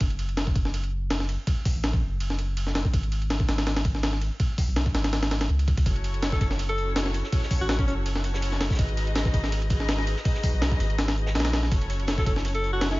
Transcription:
0.00 F#1, kick, ride
0.10 ride
0.19 ride
0.29 ride
0.37 snare, ride
0.47 kick
0.55 F#1, kick, ride
0.65 snare
0.74 ride
0.84 ride
1.10 snare, ride
1.20 snare
1.29 ride
1.47 kick, ride
1.65 kick, open hi-hat
1.75 A1
1.84 snare, ride
1.93 kick
2.02 F#1
2.20 ride
2.30 snare
2.39 ride
2.57 ride
2.67 snare
2.75 snare, ride
2.85 kick
2.94 G#1, kick, ride
3.03 ride
3.12 ride
3.22 ride
3.30 snare, ride
3.40 kick
3.49 G#1, snare, ride
3.58 snare, ride
3.67 snare, ride
3.76 snare, ride
3.85 kick, ride
3.95 snare
4.03 snare, ride
4.13 snare
4.21 ride
4.40 kick, ride
4.58 kick, open hi-hat
4.68 B1
4.76 snare, ride
4.86 kick
4.95 G#1, snare, ride
5.04 snare, ride
5.13 snare, ride
5.23 snare, ride
5.31 snare, ride
5.41 snare, ride
5.49 C#2, ride
5.59 ride
5.68 kick, ride
5.77 kick, ride
5.86 F#1 C#4 E4 F#4 A4 C#5, kick, closed hi-hat, ride
5.96 ride
6.04 closed hi-hat, ride
6.14 ride
6.22 snare, closed hi-hat, ride
6.32 A4, kick, snare
6.41 F#1 A4, kick, closed hi-hat, ride
6.50 snare
6.59 closed hi-hat, ride
6.69 A4, ride
6.77 C#4 E4 F#4 A4 C#5, closed hi-hat
6.96 snare, closed hi-hat, ride
7.06 snare
7.14 closed hi-hat, ride
7.24 snare
7.32 C#4 E4 F#4 A4 C#5, kick, open hi-hat, ride
7.43 snare
7.51 kick, closed hi-hat, open hi-hat
7.60 A1 F#4
7.69 F#4, snare, closed hi-hat, ride
7.79 C#4, kick
7.87 F#1 C#4, closed hi-hat
8.06 closed hi-hat, ride
8.15 snare
8.24 C#4 E4 F#4 A4 C#5, closed hi-hat, ride
8.34 snare
8.42 closed hi-hat, ride
8.52 snare, closed hi-hat
8.60 snare, closed hi-hat, ride
8.70 kick, snare, closed hi-hat
8.75 snare, closed hi-hat
8.78 G#1 D#4 F#4 G#4 B4 D#5, kick, closed hi-hat, ride
8.89 ride
8.97 closed hi-hat, ride
9.07 ride
9.15 snare, closed hi-hat, ride
9.25 kick, snare
9.34 G#1, kick, closed hi-hat, ride
9.44 snare
9.52 closed hi-hat, ride
9.62 ride
9.70 D#4 F#4 G#4 B4 D#5, kick, closed hi-hat, ride
9.80 snare
9.88 snare, closed hi-hat, ride
9.98 snare
10.07 closed hi-hat, ride
10.16 snare
10.25 D#4 F#4 G#4 B4 D#5, kick, open hi-hat, ride
10.34 snare
10.43 kick, closed hi-hat, open hi-hat
10.53 B1
10.61 snare, closed hi-hat, ride
10.72 kick
10.80 G#1, closed hi-hat, ride
10.90 ride
10.98 snare, closed hi-hat, ride
11.08 snare, ride
11.17 D#4 F#4 G#4 B4 D#5, closed hi-hat
11.27 snare
11.35 A#1, snare, closed hi-hat, ride
11.40 snare, ride
11.45 snare, ride
11.53 snare, closed hi-hat, ride
11.63 snare
11.71 F#1 C#4 E4 F#4 A4 C#5, kick, closed hi-hat, ride
11.81 ride
11.90 closed hi-hat, ride
11.99 ride
12.07 snare, closed hi-hat, ride
12.18 A4, kick, snare
12.26 F#1 A4, kick, closed hi-hat, ride
12.36 snare
12.45 closed hi-hat, ride
12.54 A4, ride
12.63 C#4 E4 F#4 A4 C#5, closed hi-hat
12.73 F#4
12.81 snare, closed hi-hat, ride
12.91 E4, snare

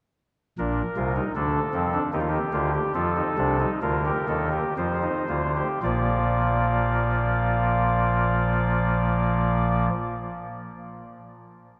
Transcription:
0.58 A#1 A#2 D4 A#4
0.97 C2 C3 F4
1.16 D#4
1.35 D2 D3 D4 A4
1.74 F2 F3 C4
1.94 D4
2.13 D#2 D#3 D#4 G4
2.21 F4
2.28 G4
2.53 D2 D3 F4
2.74 G4
2.95 F2 F3 F4 A4
3.16 D#4
3.38 C2 C3 D4
3.60 D#4
3.82 D2 D3 F4 A#4
4.05 G4
4.28 D#2 D#3 A4
4.52 G4
4.77 F2 F3 F4 C5
5.02 D#4
5.29 D2 D3 F4
5.56 G4
5.83 A#1 A#2 F3 A#3 F4 D5

